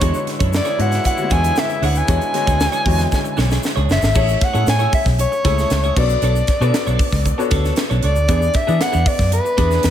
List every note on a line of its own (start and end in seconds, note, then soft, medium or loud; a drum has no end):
0.00 0.11 E2 loud
0.00 3.85 C#3 loud
0.00 0.49 D3 medium
0.00 0.78 G#3 medium
0.00 3.85 B3 medium
0.00 0.79 D4 medium
0.00 0.19 D4 loud
0.00 3.85 E4 loud
0.00 0.02 F#4 medium
0.00 0.49 F#4 medium
0.00 0.13 G#4 loud
0.00 0.02 C#5 medium
0.00 0.27 C#5 medium
0.00 0.49 C#5 medium
0.00 0.12 C#5 loud
0.00 kick loud
0.00 closed hi-hat medium
0.00 shaker medium
0.13 muted clean electric guitar stroke soft
0.13 shaker medium
0.27 muted clean electric guitar stroke soft
0.27 snare soft
0.27 closed hi-hat medium
0.39 0.59 F#2 medium
0.39 0.51 D4 medium
0.39 0.51 G#4 medium
0.39 0.52 C#5 medium
0.39 kick loud
0.39 closed hi-hat medium
0.39 shaker soft
0.52 0.82 D5 medium
0.52 muted clean electric guitar stroke soft
0.52 snare loud
0.52 shaker medium
0.65 0.77 D4 medium
0.65 0.78 G#4 medium
0.65 0.78 C#5 medium
0.65 closed hi-hat soft
0.65 shaker medium
0.78 0.98 G#2 medium
0.78 1.03 G#3 medium
0.78 1.03 D4 medium
0.78 1.03 F#4 medium
0.78 1.03 C#5 medium
0.78 1.06 F#5 loud
0.78 muted clean electric guitar stroke medium
0.78 closed hi-hat medium
0.91 muted clean electric guitar stroke medium
0.91 snare soft
0.91 closed hi-hat medium
0.91 shaker soft
1.04 1.34 F#5 loud
1.04 muted clean electric guitar stroke soft
1.04 kick medium
1.04 closed hi-hat loud
1.04 shaker medium
1.17 1.73 D3 medium
1.17 1.24 G3 medium
1.17 1.74 F#4 medium
1.17 1.74 C#5 medium
1.17 muted clean electric guitar stroke soft
1.17 shaker soft
1.24 1.76 G#3 medium
1.30 1.49 E2 loud
1.30 1.44 D4 medium
1.30 1.43 G#4 loud
1.30 1.42 C#5 medium
1.30 1.60 G#5 loud
1.30 kick loud
1.30 closed hi-hat medium
1.30 shaker soft
1.43 1.55 D4 medium
1.43 1.56 G#4 medium
1.43 1.56 C#5 medium
1.43 closed hi-hat medium
1.43 shaker medium
1.56 1.87 E5 loud
1.56 muted clean electric guitar stroke soft
1.56 snare loud
1.56 shaker medium
1.69 muted clean electric guitar stroke medium
1.69 closed hi-hat soft
1.69 shaker soft
1.82 2.01 D2 medium
1.82 2.00 D4 medium
1.82 1.95 G#4 medium
1.82 1.94 C#5 loud
1.82 1.99 F#5 medium
1.82 open hi-hat medium
1.82 shaker soft
1.95 3.65 G#5 loud
1.95 muted clean electric guitar stroke soft
1.95 closed hi-hat medium
1.95 shaker medium
2.08 2.18 E2 loud
2.08 2.24 G#3 medium
2.08 2.26 D4 medium
2.08 2.24 D4 medium
2.08 2.24 F#4 medium
2.08 2.21 G#4 medium
2.08 2.24 C#5 medium
2.08 2.20 C#5 medium
2.08 kick loud
2.08 closed hi-hat medium
2.08 shaker medium
2.21 muted clean electric guitar stroke medium
2.21 closed hi-hat soft
2.21 shaker medium
2.34 2.66 D3 medium
2.34 2.66 G#3 medium
2.34 2.66 F#4 medium
2.34 2.66 C#5 loud
2.34 muted clean electric guitar stroke medium
2.34 snare soft
2.34 closed hi-hat medium
2.46 2.66 D2 loud
2.46 2.59 D4 medium
2.46 2.59 G#4 medium
2.46 2.60 C#5 medium
2.46 kick loud
2.46 closed hi-hat medium
2.46 shaker medium
2.60 muted clean electric guitar stroke soft
2.60 snare loud
2.60 shaker medium
2.72 2.84 D4 medium
2.72 2.85 G#4 medium
2.72 2.85 C#5 medium
2.72 closed hi-hat soft
2.72 shaker medium
2.85 3.04 E2 loud
2.85 3.50 D3 medium
2.85 3.49 G#3 medium
2.85 3.50 F#4 medium
2.85 3.50 C#5 loud
2.85 muted clean electric guitar stroke soft
2.85 kick loud
2.85 open hi-hat medium
2.98 muted clean electric guitar stroke soft
2.98 snare soft
2.98 closed hi-hat soft
2.98 shaker soft
3.11 muted clean electric guitar stroke medium
3.11 kick medium
3.11 snare medium
3.11 shaker medium
3.24 muted clean electric guitar stroke soft
3.24 shaker soft
3.37 3.56 B1 loud
3.37 3.50 D4 medium
3.37 3.49 G#4 medium
3.37 3.49 C#5 medium
3.37 snare medium
3.37 shaker soft
3.50 3.62 D4 medium
3.50 3.63 G#4 medium
3.50 3.63 C#5 medium
3.50 snare medium
3.50 shaker medium
3.63 muted clean electric guitar stroke soft
3.63 snare medium
3.63 shaker medium
3.76 3.86 C#2 medium
3.76 3.88 D4 medium
3.76 3.89 G#4 medium
3.76 3.90 C#5 medium
3.76 shaker soft
3.89 3.99 F#1 medium
3.89 4.03 D4 medium
3.89 4.02 G#4 medium
3.89 4.01 C#5 medium
3.89 4.45 E5 loud
3.89 snare loud
3.89 shaker soft
4.02 4.12 G#1 loud
4.02 muted clean electric guitar stroke soft
4.02 snare loud
4.02 shaker medium
4.15 4.34 A1 loud
4.15 4.39 A3 medium
4.15 4.39 C#4 medium
4.15 4.33 E4 medium
4.15 4.39 E4 medium
4.15 4.28 G#4 medium
4.15 4.39 G#4 medium
4.15 4.40 C#5 medium
4.15 4.26 C#5 medium
4.15 kick loud
4.15 crash medium
4.15 shaker medium
4.28 muted clean electric guitar stroke soft
4.28 shaker soft
4.41 4.68 F#5 loud
4.41 muted clean electric guitar stroke medium
4.41 kick loud
4.41 snare soft
4.41 closed hi-hat medium
4.53 4.64 A2 loud
4.53 5.09 A3 medium
4.53 5.10 C#4 medium
4.53 5.10 E4 medium
4.53 4.65 E4 medium
4.53 4.66 G#4 medium
4.53 5.10 G#4 medium
4.53 4.66 C#5 medium
4.53 5.10 C#5 medium
4.53 shaker soft
4.67 4.86 A2 medium
4.67 4.92 G#5 loud
4.67 muted clean electric guitar stroke soft
4.67 snare loud
4.67 closed hi-hat medium
4.67 shaker medium
4.79 4.92 E4 medium
4.79 4.92 G#4 medium
4.79 4.93 C#5 medium
4.79 shaker medium
4.93 5.06 E5 medium
4.93 muted clean electric guitar stroke soft
4.93 kick loud
4.93 open hi-hat medium
4.93 shaker soft
5.06 5.25 B1 medium
5.06 muted clean electric guitar stroke soft
5.06 kick medium
5.06 snare soft
5.06 shaker soft
5.19 6.00 C#5 loud
5.19 muted clean electric guitar stroke soft
5.19 closed hi-hat medium
5.19 shaker medium
5.32 muted clean electric guitar stroke soft
5.32 shaker soft
5.44 5.63 C#2 medium
5.44 5.92 A3 medium
5.44 5.92 C#4 medium
5.44 5.92 E4 medium
5.44 5.58 E4 medium
5.44 5.92 G#4 medium
5.44 5.57 G#4 loud
5.44 5.92 C#5 medium
5.44 5.57 C#5 loud
5.44 kick loud
5.44 snare soft
5.44 closed hi-hat medium
5.58 5.69 E4 medium
5.58 5.70 G#4 medium
5.58 5.70 C#5 medium
5.58 snare soft
5.58 shaker medium
5.70 5.89 C#2 loud
5.70 muted clean electric guitar stroke soft
5.70 snare loud
5.70 closed hi-hat medium
5.70 shaker medium
5.83 5.96 E4 medium
5.83 5.97 G#4 medium
5.83 5.97 C#5 medium
5.83 shaker soft
5.96 6.15 B1 loud
5.96 6.48 B3 medium
5.96 6.03 C#4 medium
5.96 6.10 D4 medium
5.96 6.48 F#4 medium
5.96 6.48 A4 medium
5.96 6.10 A4 medium
5.96 6.09 C#5 medium
5.96 6.49 D5 medium
5.96 7.52 D5 medium
5.96 kick loud
5.96 crash medium
6.02 6.51 D4 medium
6.09 muted clean electric guitar stroke medium
6.09 shaker medium
6.22 6.41 B1 loud
6.22 6.40 D4 medium
6.22 6.36 A4 loud
6.22 6.34 C#5 loud
6.22 closed hi-hat medium
6.22 shaker medium
6.36 muted clean electric guitar stroke soft
6.36 shaker medium
6.47 muted clean electric guitar stroke soft
6.47 kick loud
6.47 snare soft
6.47 closed hi-hat medium
6.61 6.70 B2 loud
6.61 7.08 B3 loud
6.61 7.08 D4 medium
6.61 6.73 D4 medium
6.61 7.09 F#4 medium
6.61 7.09 A4 medium
6.61 6.73 A4 medium
6.61 6.74 C#5 medium
6.61 7.09 D5 loud
6.61 shaker soft
6.74 snare loud
6.74 closed hi-hat medium
6.74 shaker medium
6.87 6.96 B1 medium
6.87 6.98 D4 medium
6.87 6.99 A4 medium
6.87 6.99 C#5 medium
6.87 shaker medium
6.99 muted clean electric guitar stroke soft
6.99 kick loud
6.99 open hi-hat medium
6.99 shaker soft
7.12 7.31 C#2 loud
7.12 muted clean electric guitar stroke soft
7.12 kick medium
7.12 snare soft
7.12 shaker soft
7.25 muted clean electric guitar stroke soft
7.25 kick medium
7.25 closed hi-hat medium
7.25 shaker medium
7.38 7.93 B3 medium
7.38 7.94 D4 medium
7.38 7.94 F#4 medium
7.38 7.94 A4 medium
7.38 7.94 C#5 loud
7.38 muted clean electric guitar stroke soft
7.38 shaker medium
7.51 7.70 D2 loud
7.51 7.64 D4 medium
7.51 7.63 A4 medium
7.51 7.63 C#5 medium
7.51 kick loud
7.51 snare soft
7.51 closed hi-hat medium
7.64 7.75 D4 medium
7.64 7.76 A4 medium
7.64 7.77 C#5 medium
7.64 snare soft
7.64 shaker medium
7.76 muted clean electric guitar stroke soft
7.76 snare loud
7.76 closed hi-hat medium
7.76 shaker medium
7.90 8.00 B1 loud
7.90 8.01 D4 medium
7.90 8.02 A4 medium
7.90 8.03 C#5 medium
7.90 shaker soft
8.03 8.17 C#2 loud
8.03 8.17 D4 medium
8.03 8.15 A4 medium
8.03 8.14 C#5 medium
8.03 8.57 D5 loud
8.03 closed hi-hat medium
8.16 8.26 D2 loud
8.16 muted clean electric guitar stroke medium
8.16 shaker medium
8.28 8.47 E2 loud
8.28 8.52 B3 medium
8.28 8.46 B3 medium
8.28 8.52 D4 medium
8.28 8.41 D4 medium
8.28 8.53 E4 medium
8.28 8.53 G#4 medium
8.28 8.40 G#4 loud
8.28 8.53 D5 medium
8.28 kick loud
8.28 closed hi-hat medium
8.28 shaker medium
8.42 muted clean electric guitar stroke soft
8.42 shaker medium
8.54 8.84 E5 loud
8.54 muted clean electric guitar stroke soft
8.54 kick loud
8.54 snare soft
8.54 closed hi-hat medium
8.67 8.77 E3 loud
8.67 9.23 B3 medium
8.67 8.79 B3 medium
8.67 9.23 D4 medium
8.67 8.79 D4 medium
8.67 9.23 E4 medium
8.67 8.80 G#4 medium
8.67 9.23 G#4 medium
8.67 9.23 D5 medium
8.67 shaker soft
8.80 9.09 F#5 loud
8.80 muted clean electric guitar stroke soft
8.80 snare loud
8.80 closed hi-hat medium
8.80 shaker medium
8.92 9.03 E2 loud
8.92 9.05 B3 medium
8.92 9.05 D4 medium
8.92 9.05 G#4 medium
8.92 shaker medium
9.06 9.33 D5 loud
9.06 muted clean electric guitar stroke soft
9.06 kick loud
9.06 open hi-hat medium
9.06 shaker soft
9.19 9.38 F#2 medium
9.19 muted clean electric guitar stroke soft
9.19 kick medium
9.19 snare soft
9.19 shaker soft
9.31 9.90 B4 loud
9.31 muted clean electric guitar stroke soft
9.31 closed hi-hat loud
9.31 shaker medium
9.45 muted clean electric guitar stroke soft
9.45 shaker soft
9.57 9.77 E2 loud
9.57 9.71 B3 loud
9.57 9.90 B3 medium
9.57 9.90 D4 medium
9.57 9.71 D4 medium
9.57 9.90 E4 medium
9.57 9.90 G#4 medium
9.57 9.70 G#4 loud
9.57 9.90 D5 medium
9.57 kick loud
9.57 closed hi-hat loud
9.71 9.83 B3 medium
9.71 9.83 D4 medium
9.71 9.84 G#4 medium
9.71 snare soft
9.71 shaker medium
9.83 9.90 E2 loud
9.83 muted clean electric guitar stroke soft
9.83 snare loud
9.83 closed hi-hat loud
9.83 shaker medium